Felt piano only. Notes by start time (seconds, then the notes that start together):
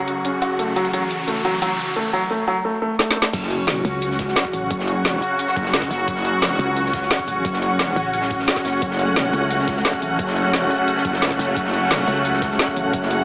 0.25 C#4
0.42 F#4
0.59 A3
0.76 F#3
0.93 F#3
1.28 A3
1.45 F#3
1.62 F#3
1.96 A3
2.13 F#3
2.30 A3
2.48 F#3
2.65 A3
2.82 A3
2.99 A3
3.16 A3